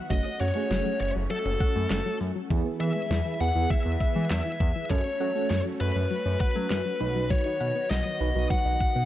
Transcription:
Already playing: F#4
0.10 F#1 F#3 A3 C#4 F#4 D#5, kick, closed hi-hat
0.26 C#4
0.40 F#2 A3 C#4 F#4 C#5 F#5, closed hi-hat
0.56 A3 C#4 G#4
0.71 F#1 F#3, snare, closed hi-hat
0.86 F#3
1.00 F#1 C#5, closed hi-hat
1.15 F#1 F#3
1.30 F#3 A4, closed hi-hat
1.45 F#1 C#4
1.60 F#5, kick, closed hi-hat
1.75 F#2 A3
1.90 F#1 F#3, snare, clap, closed hi-hat
2.06 F#3
2.20 F#2 F#3, open hi-hat
2.36 F#3
2.50 E2 E3 B3 E4 G#4 B4, kick, closed hi-hat
2.66 B3
2.80 E3 E5, closed hi-hat
2.96 G#3
3.10 E2 E3, snare, closed hi-hat
3.26 E3
3.40 E2 B3 E4 G#4 F#5, closed hi-hat
3.55 E2 E3 B3 E4 G#4
3.70 E3 E5, kick, closed hi-hat
3.85 E2 B3
4.00 E5, kick, closed hi-hat
4.16 E3 G#3
4.30 E2 E3 E5, snare, clap, closed hi-hat
4.46 E3
4.60 E2 E3, kick, closed hi-hat
4.76 E3
4.91 F#2 F#3 A3 C#4 F#4 A4 C#5, kick, closed hi-hat
5.06 C#4
5.20 F#3 C#4 F#4 A4 F#5, closed hi-hat
5.35 A3 C#4 F#4 A4
5.50 F#2 F#3 C#5, snare, closed hi-hat
5.66 F#3
5.80 F#2 B4, closed hi-hat
5.95 F#2 F#3
6.11 F#3, closed hi-hat
6.26 F#2 C#4
6.40 B4 F#5, kick, closed hi-hat
6.56 F#3 A3
6.70 F#2 F#3, snare, clap, closed hi-hat
6.86 F#3
7.00 B1 D#3 F#3 B3 D#4 F#4 B4, closed hi-hat
7.15 F#3
7.30 F#3 C#5, kick, closed hi-hat
7.46 D#4
7.60 B2 F#5, closed hi-hat
7.75 B3
7.90 B1 F#3 D#5, snare, closed hi-hat
8.05 F#3
8.20 B1 D#4 F#4 B4, closed hi-hat
8.35 B1 F#3 D#4 F#4 B4
8.50 F#3 F#5, kick, closed hi-hat
8.65 B1 D#4
8.81 F#5, kick, closed hi-hat
8.96 B2 B3

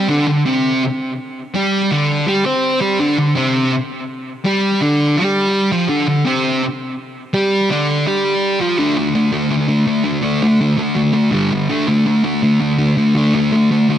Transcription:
0.09 D3 D4
0.27 D3
0.46 C3 C4
1.54 G3 G4
1.91 D3 D4
2.27 G3 G4
2.45 C4 C5
2.81 G3 G4
2.99 D3 D4
3.18 D3
3.35 C3 C4
4.44 G3 G4
4.81 D3 D4
5.17 G3 G4
5.72 F3 F4
5.89 D3 D4
6.08 D3
6.25 C3 C4
7.33 G3 G4
7.70 D3 D4
8.06 G3 G4
8.60 F3 F4
8.78 D3 A3 D4
8.97 D3 A3
9.15 D3 A3
9.32 D3 A3
9.50 D3 A3
9.68 D3 A3
9.87 D3 A3
10.04 D3 A3
10.23 D3 A3 D4
10.42 D3 A3
10.61 D3 A3
10.77 D3 A3
10.95 D3 A3
11.13 D3 A3
11.31 G2 D3 G3
11.52 G2 D3
11.69 D3 A3 D4
11.87 D3 A3
12.06 D3 A3
12.24 D3 A3
12.43 D3 A3
12.60 D3 A3
12.78 D3 A3
12.97 D3 A3
13.15 D3 A3 D4
13.34 D3 A3
13.52 D3 A3
13.71 D3 A3
13.89 D3 A3

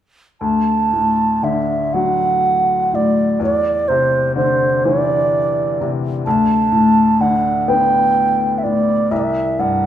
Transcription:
0.41 D2 A5
0.93 A2
1.43 D3 E5
1.94 F#3 F#5
2.93 A2 D5
3.40 E2
3.44 D5
3.88 C3 C5
4.36 D3 C5
4.85 E3 D5
5.81 C3
6.26 D2 A5
6.72 A2
7.20 D3 F#5
7.68 B3 G5
8.58 E5
8.63 A2 D5
9.11 C2 E5
9.19 D5
9.24 E5
9.59 G2 F#5

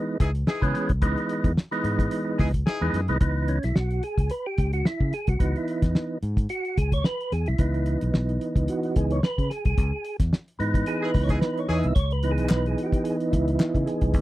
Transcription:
Already playing: E3 G#3 B3 D#4
0.20 C#2 E3 D#4 G#4, kick, closed hi-hat
0.35 closed hi-hat
0.47 E3 D#4 G#4, snare
0.62 C#3 E3 G#3 B3 C#4, kick, closed hi-hat
0.74 snare, closed hi-hat
0.89 C2, kick, closed hi-hat
1.02 C#2 E3 G#3 B3 D#4, kick, closed hi-hat
1.18 closed hi-hat
1.29 closed hi-hat
1.44 E2, kick, closed hi-hat
1.57 snare
1.71 E3 G#3 B3 D#4, closed hi-hat
1.84 G#2, closed hi-hat
1.99 kick, closed hi-hat
2.11 closed hi-hat
2.39 C#2 E3 D#4 G#4, kick, open hi-hat
2.54 kick, closed hi-hat
2.66 E3 D#4 G#4, snare
2.81 E2 E3 G#3 B3 D#4
2.93 F#2, snare, closed hi-hat
3.08 C2 E3 G#3 B3 D#4, closed hi-hat
3.21 C#2 E3 B3 D#4, kick, closed hi-hat
3.48 C#4, closed hi-hat
3.63 B1 E4, snare, closed hi-hat
3.75 B1 F#4, snare
3.91 closed hi-hat
4.03 G#4, closed hi-hat
4.18 C#2, kick, closed hi-hat
4.30 B4, closed hi-hat
4.46 G4
4.58 C#2, kick, closed hi-hat
4.73 F#4, closed hi-hat
4.85 E4, snare
5.00 C#3, kick
5.12 G#4, snare, closed hi-hat
5.27 C2 F#4, kick, closed hi-hat
5.39 C#2 E3 B3 D#4, kick, closed hi-hat
5.56 E4, closed hi-hat
5.68 closed hi-hat
5.82 E2, kick, snare, closed hi-hat
5.95 snare
6.23 G#2, closed hi-hat
6.37 kick, closed hi-hat
6.49 F#4, closed hi-hat
6.65 closed hi-hat
6.77 C#2 G#4, kick, closed hi-hat
6.92 C#5, kick, closed hi-hat
7.04 B4, snare
7.21 closed hi-hat
7.32 E2 G#4, snare, closed hi-hat
7.46 C2 E4, closed hi-hat
7.58 C#2 E3 B3 D#4, kick, closed hi-hat
7.74 closed hi-hat
7.86 closed hi-hat
8.01 B1, closed hi-hat
8.14 B1, snare
8.29 closed hi-hat
8.41 closed hi-hat
8.56 C#2, kick, closed hi-hat
8.68 F#4, closed hi-hat
8.83 closed hi-hat
8.96 C#2 E3 B3 D#4 G#4, kick, closed hi-hat
9.11 C#5, closed hi-hat
9.23 B4, snare
9.38 C#3, kick, closed hi-hat
9.50 G#4, snare, closed hi-hat
9.65 C2 G#4, kick, closed hi-hat
9.78 C#2, kick, closed hi-hat
10.05 closed hi-hat
10.20 E2, kick, snare, closed hi-hat
10.33 snare
10.48 closed hi-hat
10.59 G#2 E3 B3 D#4, closed hi-hat
10.74 kick, closed hi-hat
10.86 G#4, closed hi-hat
11.02 E3 D#4 G#4 B4
11.14 C#2, kick, open hi-hat
11.24 C#5
11.29 E3 D#4 G#4, kick, closed hi-hat
11.41 B4, snare
11.58 C#5, closed hi-hat
11.68 E2 E3 B3 D#4 G#4, snare, closed hi-hat
11.77 E5
11.83 C2, closed hi-hat
11.95 C#2 C#5, kick, closed hi-hat
12.11 B4, closed hi-hat
12.23 E3 B3 D#4, closed hi-hat
12.31 G#4
12.38 B1, closed hi-hat
12.49 B1 B4, snare, clap
12.66 G#4, closed hi-hat
12.78 closed hi-hat
12.83 F#4 G4
12.92 kick, closed hi-hat
13.04 G#4, closed hi-hat
13.20 closed hi-hat
13.31 C#2 E4, kick, closed hi-hat
13.48 closed hi-hat
13.60 snare, clap
13.75 C#3, kick, closed hi-hat
13.86 G#4, snare, closed hi-hat
14.01 C2, kick, closed hi-hat
14.14 C#2, kick, closed hi-hat

